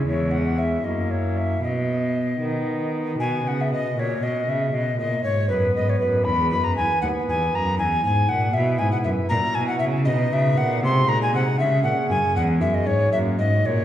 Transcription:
<<
  \new Staff \with { instrumentName = "Recorder" } { \time 6/8 \key b \major \tempo 4. = 78 cis''8 fis''8 e''8 dis''8 cis''8 e''8 | dis''2~ dis''8 r8 | gis''8 fis''16 e''16 dis''8 cis''8 dis''8 e''8 | dis''8 dis''8 cis''8 b'8 dis''16 cis''16 b'8 |
b''8 b''16 ais''16 gis''8 fis''8 gis''8 ais''8 | gis''8 gis''8 fis''8 e''8 gis''16 fis''16 e''8 | ais''8 gis''16 fis''16 e''8 dis''8 e''8 fis''8 | bis''8 ais''16 gis''16 fis''8 e''8 fis''8 gis''8 |
fis''8 e''16 dis''16 cis''8 e''8 dis''8 cis''8 | }
  \new Staff \with { instrumentName = "Pipe organ" } { \time 6/8 \key b \major <gis cis' e'>4. <ais cis' e'>4. | r4. <b dis'>4. | <b fis'>4. <cis' fis'>4. | r4. <b b'>4. |
<gis b b'>4. <b b'>4. | r4. <b e' b'>4. | <cis' e' fis'>4. <b dis' fis'>4. | <gis dis' fis'>4. <gis cis' gis'>4. |
<gis cis' gis'>4. <ais cis' fis'>4. | }
  \new Staff \with { instrumentName = "Pipe organ" } { \clef bass \time 6/8 \key b \major e,4. fis,4. | b,4. dis4. | b,8 cis8 b,8 ais,8 b,8 cis8 | b,8 ais,8 gis,8 fis,8 gis,8 fis,8 |
e,8 fis,8 e,8 dis,8 e,8 fis,8 | e,8 gis,8 ais,8 b,8 gis,8 fis,8 | ais,8 b,8 cis8 b,8 cis8 ais,8 | bis,8 ais,8 bis,8 cis8 ais,8 fis,8 |
e,8 fis,8 gis,8 fis,8 gis,8 ais,8 | }
  \new Staff \with { instrumentName = "Cello" } { \clef bass \time 6/8 \key b \major e,4. fis,4. | b,4. dis4. | b,8 cis8 b,8 ais,8 b,8 cis8 | b,8 ais,8 gis,8 fis,8 gis,8 fis,8 |
e,8 fis,8 e,8 dis,8 e,8 fis,8 | e,8 gis,8 ais,8 b,8 gis,8 fis,8 | ais,8 b,8 cis8 b,8 cis8 ais,8 | bis,8 ais,8 bis,8 cis8 ais,8 fis,8 |
e,8 fis,8 gis,8 fis,8 gis,8 ais,8 | }
>>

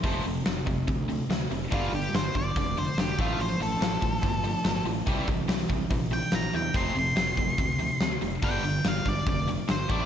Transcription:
<<
  \new Staff \with { instrumentName = "Lead electric guitar" } { \time 4/4 \key f \major \tempo 4 = 143 r1 | f'8 g'8 c''8 d''4 c''8 g'8 f'8 | c''8 a'2. r8 | r2 r8 g''8 bes''8 g''8 |
c'''8 c'''2. r8 | g''4 f''8 d''8 d''8 r8 c''8 d''8 | }
  \new Staff \with { instrumentName = "Overdriven electric guitar" } { \clef bass \time 4/4 \key f \major <f, c f>8 <f, c>8 <f, c>8 <f, c>8 <f, c>8 <f, c>8 <f, c>8 <f, c>8 | <g, d g>8 <g, d>8 <g, d>8 <g, d>8 <g, d>8 <g, d>8 <g, d>8 <a, f a>8 | <a, f>8 <a, f>8 <a, f>8 <a, f>8 <a, f>8 <a, f>8 <a, f>8 <a, f>8 | <c e g>8 <c e>8 <c e>8 <c e>8 <c e>8 <c e>8 <c e>8 <c e>8 |
<f, c f>8 <f, c>8 <f, c>8 <f, c>8 <f, c>8 <f, c>8 <f, c>8 <f, c>8 | <g, d g>8 <g, d>8 <g, d>8 <g, d>8 <g, d>8 <g, d>8 <g, d>8 <a, f a>8 | }
  \new Staff \with { instrumentName = "Fingered electric bass" } { \clef bass \time 4/4 \key f \major f,,8 f,,8 f,,8 f,,8 d,4 d,8 f,,8 | g,,8 g,,8 g,,8 g,,8 f,,4 f,,8 a,,8 | a,,8 a,,8 a,,8 a,,8 g,,4 g,,8 a,,8 | c,8 c,8 c,8 c,8 bes,,4 bes,,8 e,8 |
f,,8 f,,8 f,,8 f,,8 d,4 d,8 f,,8 | g,,8 g,,8 g,,8 g,,8 f,,4 g,,8 a,,8 | }
  \new DrumStaff \with { instrumentName = "Drums" } \drummode { \time 4/4 <hho bd>8 hho8 <hho sn>8 <hho bd>8 <hho bd>8 hho8 <hho sn>8 hho8 | <hho bd>8 hho8 <hho sn>8 <hho bd>8 <hho bd>8 hho8 <hho sn>8 <hho bd>8 | hho8 hho8 <hho sn>8 <hho bd>8 <hho bd>8 hho8 <hho sn>8 hho8 | <hho bd>8 <hho bd>8 <hho sn>16 sn16 <hho bd>8 <hho bd>8 hho8 <hho sn>8 hho8 |
<hho bd>8 hho8 <hho sn>8 <hho bd>8 <hho bd>8 hho8 <hho sn>8 hho8 | <hho bd>8 hho8 <hho sn>8 <hho bd>8 <hho bd>8 hho8 <hho sn>8 <hho bd>8 | }
>>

